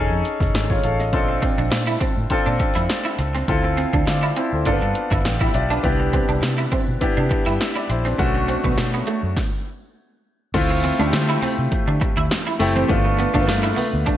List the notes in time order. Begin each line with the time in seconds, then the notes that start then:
Already playing: C#4 D#4 G#4 A4
0.11 F2
0.25 closed hi-hat
0.40 F1, kick, snare
0.54 G#1 C#4 A4, snare, closed hi-hat
0.70 F4 C#5, kick
0.83 A1 A4 F5, closed hi-hat
1.00 D#5, snare
1.13 A#1 C4 D4 F4 A4, kick, closed hi-hat
1.29 muted clean electric guitar stroke
1.42 C4, kick, closed hi-hat
1.58 A#1 D4
1.72 A#2, muted clean electric guitar stroke, snare, closed hi-hat
1.87 E4
2.00 C4, kick, closed hi-hat
2.17 A2
2.30 C4 D4 F4 A4, muted fingered electric bass stroke, kick, closed hi-hat
2.46 A#2 D4
2.60 muted clean electric guitar stroke, kick, closed hi-hat
2.75 F2 E4, snare
2.89 snare, closed hi-hat
3.05 E4
3.19 C#2, muted clean electric guitar stroke, closed hi-hat
3.35 C4, snare
3.48 D2 C4 E4 F4 A4, kick, closed hi-hat
3.64 muted clean electric guitar stroke
3.77 C4, closed hi-hat
3.93 D2 D4, kick
4.07 D3 F4 D5, muted clean electric guitar stroke, snare, closed hi-hat
4.23 E4
4.36 C4 E4 C5, closed hi-hat
4.53 D2 C4 A4
4.65 G1 A#3 D4 F4 A4, kick, closed hi-hat
4.72 B3
4.82 G2, muted clean electric guitar stroke
4.95 closed hi-hat
5.11 G1 E4, kick, snare
5.25 A1 B4 G5, snare, closed hi-hat
5.41 E4 G4 E5, kick
5.54 B1 F4 D5, muted clean electric guitar stroke, closed hi-hat
5.70 D4 B4, snare
5.83 C2 B3 D4 E4 G4, kick, closed hi-hat
6.00 muted clean electric guitar stroke
6.13 C4, kick, closed hi-hat
6.29 C2 D4
6.42 C3, muted clean electric guitar stroke, snare, closed hi-hat
6.58 E4
6.72 C4, kick, closed hi-hat
6.88 B2
7.01 B3 D4 E4 G4, muted fingered electric bass stroke, kick, closed hi-hat
7.17 C3 D4
7.31 muted clean electric guitar stroke, kick, closed hi-hat
7.46 G2 E4 B4 G5, snare
7.60 G4 E5, snare, closed hi-hat
7.76 E4 D5
7.90 A#1 E4 C5, muted clean electric guitar stroke, closed hi-hat
8.05 C4 D4 B4, snare
8.18 B1 A3 C#4 D4 F#4, kick, closed hi-hat
8.35 muted clean electric guitar stroke
8.48 C4, closed hi-hat
8.64 B1 B3, kick
8.78 B2, muted clean electric guitar stroke, snare, closed hi-hat
8.94 B3
9.07 A3, closed hi-hat
9.23 F#2
9.37 kick, snare
10.54 D2 A3 C4 E4 F4, kick, closed hi-hat, crash
10.70 muted clean electric guitar stroke
10.83 C4, closed hi-hat, muted conga
10.99 D2 A3 C4 D4 E4 F4
11.06 G4
11.13 D3, muted clean electric guitar stroke, snare, closed hi-hat, high conga
11.29 E4
11.42 C4, open hi-hat, muted conga, low conga
11.58 C3
11.71 muted fingered electric bass stroke, kick, closed hi-hat, muted conga
11.88 D3 D4
12.01 muted clean electric guitar stroke, kick, closed hi-hat
12.17 D2 E4
12.30 snare, closed hi-hat, high conga
12.47 E4
12.59 F#1 A3 C4 E4 G4, muted clean electric guitar stroke, open hi-hat
12.75 C4, high conga
12.88 G1 A3 B3 D4 F4, kick, closed hi-hat
13.05 muted clean electric guitar stroke
13.19 B3, closed hi-hat, muted conga
13.34 G1 A3 A#3 D4 F4, kick
13.41 B3
13.48 G2, muted clean electric guitar stroke, snare, closed hi-hat, high conga
13.63 E4
13.76 B3, open hi-hat, muted conga, low conga
13.93 D2
14.06 D4, muted fingered electric bass stroke, kick, closed hi-hat, muted conga, low conga